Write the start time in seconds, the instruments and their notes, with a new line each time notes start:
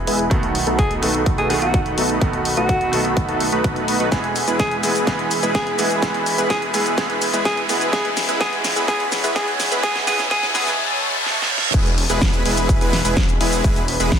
Already playing: grand piano E3 G#3 B3 G#4, analog synth pad G#4 B4 E5 B5, riser
0.07 detuned saw bass E1, supersaw synth G#3 B3 E4 G#4 B4, open hi-hat
0.19 closed hi-hat
0.30 detuned saw bass B1, grand piano D#3 A3 B3 F#4, supersaw synth A3 B3 D#4 F#4 A4, analog synth pad A4 D#5 F#5, kick, closed hi-hat
0.43 closed hi-hat
0.55 open hi-hat
0.67 detuned saw bass B1, supersaw synth A3 B3 D#4 F#4 A4, closed hi-hat
0.79 alto saxophone G#4, kick, closed hi-hat
0.91 closed hi-hat
1.02 detuned saw bass B1, grand piano D#3 A3 B3 F#4, supersaw synth A3 B3 D#4 F#4 A4, open hi-hat
1.14 closed hi-hat
1.26 kick, closed hi-hat
1.38 detuned saw bass B1, supersaw synth A3 B3 D#4 F#4 A4, alto saxophone G#4, closed hi-hat
1.49 grand piano D#3 A3 B3 F#4, alto saxophone G#4, open hi-hat
1.62 detuned saw bass B1, supersaw synth A3 B3 D#4 F#4 A4, alto saxophone F#4, closed hi-hat
1.74 kick, closed hi-hat
1.86 closed hi-hat
1.98 detuned saw bass B1, supersaw synth A3 B3 D#4 F#4 A4, open hi-hat
2.10 closed hi-hat
2.20 detuned saw bass B1, grand piano D#3 A3 B3 F#4, kick, closed hi-hat
2.33 closed hi-hat
2.45 open hi-hat
2.57 detuned saw bass B1, supersaw synth A3 B3 D#4 F#4 A4, alto saxophone F#4, closed hi-hat
2.69 kick, closed hi-hat
2.81 closed hi-hat
2.92 detuned saw bass B1, grand piano D#3 A3 B3 F#4, supersaw synth A3 B3 D#4 F#4 A4, open hi-hat
3.05 closed hi-hat
3.17 kick, closed hi-hat
3.29 detuned saw bass B1, supersaw synth A3 B3 D#4 F#4 A4, closed hi-hat
3.40 open hi-hat
3.52 detuned saw bass B1, supersaw synth A3 B3 D#4 F#4 B4, closed hi-hat
3.64 kick, closed hi-hat
3.76 closed hi-hat
3.88 open hi-hat
4.00 detuned saw bass B1, supersaw synth A3 B3 D#4 F#4 B4, closed hi-hat
4.11 detuned saw bass E1, grand piano E3 G#3 B3 G#4, supersaw synth G#3 B3 E4 B4, analog synth pad G#4 B4 E5, kick, snare, closed hi-hat, shaker
4.24 closed hi-hat
4.36 open hi-hat, shaker
4.48 detuned saw bass E1, supersaw synth G#3 B3 E4 G#4 B4, closed hi-hat, shaker
4.60 alto saxophone G#4, kick, snare, closed hi-hat, shaker
4.71 closed hi-hat
4.83 detuned saw bass E1, grand piano E3 G#3 B3 G#4, supersaw synth G#3 B3 E4 G#4 B4, open hi-hat, shaker
4.95 closed hi-hat, shaker
5.06 detuned saw bass E1, grand piano E3 G#3 B3 G#4, supersaw synth G#3 B3 E4 G#4 B4, kick, snare, closed hi-hat, shaker
5.19 closed hi-hat
5.31 open hi-hat, shaker
5.43 detuned saw bass E1, supersaw synth G#3 B3 E4 G#4 B4, closed hi-hat, shaker
5.55 alto saxophone G#4, kick, snare, closed hi-hat, shaker
5.67 closed hi-hat
5.78 detuned saw bass E1, grand piano E3 G#3 B3 G#4, supersaw synth G#3 B3 E4 G#4 B4, open hi-hat, shaker
5.91 closed hi-hat, shaker
6.01 detuned saw bass E1, grand piano E3 G#3 B3 G#4, supersaw synth G#3 B3 E4 G#4, kick, snare, closed hi-hat, shaker
6.14 closed hi-hat
6.26 open hi-hat, shaker
6.38 detuned saw bass E1, supersaw synth G#3 B3 E4 G#4 B4, closed hi-hat, shaker
6.50 alto saxophone G#4, kick, snare, closed hi-hat, shaker
6.62 closed hi-hat
6.73 detuned saw bass E1, grand piano E3 G#3 B3 G#4, supersaw synth G#3 B3 E4 G#4 B4, open hi-hat, shaker
6.86 closed hi-hat, shaker
6.97 detuned saw bass E1, grand piano E3 G#3 B3 G#4, supersaw synth G#3 B3 E4 G#4, kick, snare, closed hi-hat, shaker
7.10 closed hi-hat
7.22 open hi-hat, shaker
7.33 detuned saw bass E2, supersaw synth G#3 B3 E4 G#4 B4, closed hi-hat, shaker
7.45 alto saxophone G#4, kick, snare, closed hi-hat, shaker
7.57 closed hi-hat
7.69 detuned saw bass E1, grand piano E3 G#3 B3 G#4, supersaw synth G#3 B3 E4 G#4 B4, open hi-hat, shaker
7.81 closed hi-hat, shaker
7.92 detuned saw bass A1, grand piano E3 G#3 B3 G#4, supersaw synth G#3 B3 E4 G#4 B4, alto saxophone G#4, analog synth pad C#5 B5, kick, snare, closed hi-hat, shaker
8.05 closed hi-hat
8.17 snare, open hi-hat, shaker
8.29 detuned saw bass A1, supersaw synth G#3 B3 E4 G#4 B4, closed hi-hat, shaker
8.39 detuned saw bass A1, grand piano E3 G#3 B3 G#4, supersaw synth G#3 B3 E4 G#4 B4, alto saxophone G#4, kick, snare, closed hi-hat, shaker
8.53 closed hi-hat
8.64 snare, open hi-hat, shaker
8.76 detuned saw bass A1, supersaw synth G#3 B3 E4 G#4 B4, closed hi-hat, shaker
8.87 detuned saw bass A1, grand piano E3 G#3 B3 G#4, supersaw synth G#3 B3 E4 G#4 B4, alto saxophone G#4, kick, snare, closed hi-hat, shaker
9.00 closed hi-hat
9.12 snare, open hi-hat, shaker
9.24 detuned saw bass A1, supersaw synth G#3 B3 E4 G#4 B4, closed hi-hat, shaker
9.35 detuned saw bass A1, grand piano E3 G#3 B3 G#4, supersaw synth G#3 B3 E4 G#4 B4, alto saxophone G#4, kick, snare, closed hi-hat, shaker
9.48 closed hi-hat
9.60 snare, open hi-hat, shaker
9.72 detuned saw bass A1, supersaw synth G#3 B3 E4 G#4 B4, closed hi-hat, shaker
9.82 detuned saw bass A1, grand piano E3 G#3 B3 G#4, supersaw synth G#3 G#4, alto saxophone G#4, analog synth pad A5, kick, snare, closed hi-hat, shaker
9.96 snare, closed hi-hat
10.06 detuned saw bass A1, grand piano E3 G#3 B3 G#4, supersaw synth G#3 B3 E4 G#4 B4, alto saxophone G#4, snare, open hi-hat, shaker
10.19 snare, closed hi-hat, shaker
10.30 detuned saw bass A1, grand piano E3 G#3 B3 G#4, supersaw synth G#3 B3 E4 G#4 B4, alto saxophone G#4, kick, snare, closed hi-hat, shaker
10.43 snare, closed hi-hat
10.54 detuned saw bass A1, grand piano E3 G#3 B3 G#4, supersaw synth G#3 B3 E4 G#4 B4, alto saxophone G#4, snare, open hi-hat, shaker
10.67 snare, closed hi-hat, shaker
10.79 reverse cymbal
11.26 snare
11.42 snare
11.58 snare
11.74 detuned saw bass E1, supersaw synth G#3 B3 E4 G#4 B4, analog synth pad G#4 B4 E5 B5, kick, closed hi-hat, crash, shaker
11.86 closed hi-hat, shaker
11.98 open hi-hat
12.10 detuned saw bass E1, supersaw synth G#3 B3 E4 G#4 B4, closed hi-hat, shaker
12.22 kick, snare, closed hi-hat, shaker
12.34 closed hi-hat, shaker
12.45 detuned saw bass E1, supersaw synth G#3 B3 E4 G#4 B4, open hi-hat
12.57 closed hi-hat, shaker
12.69 kick, closed hi-hat, shaker
12.81 detuned saw bass E1, supersaw synth G#3 B3 E4 G#4 B4, closed hi-hat, shaker
12.93 snare, open hi-hat
13.05 detuned saw bass E1, supersaw synth G#3 B3 E4 G#4 B4, closed hi-hat, shaker
13.17 kick, snare, closed hi-hat, shaker
13.29 closed hi-hat, shaker
13.41 detuned saw bass E1, supersaw synth G#3 B3 E4 G#4 B4, open hi-hat
13.53 closed hi-hat, shaker
13.64 detuned saw bass E1, supersaw synth G#3 B3 E4 G#4 B4, analog synth pad F#5, kick, closed hi-hat, shaker
13.76 closed hi-hat, shaker
13.88 open hi-hat
14.00 detuned saw bass E1, supersaw synth G#3 B3 E4 G#4 B4, closed hi-hat, shaker
14.12 kick, snare, closed hi-hat, shaker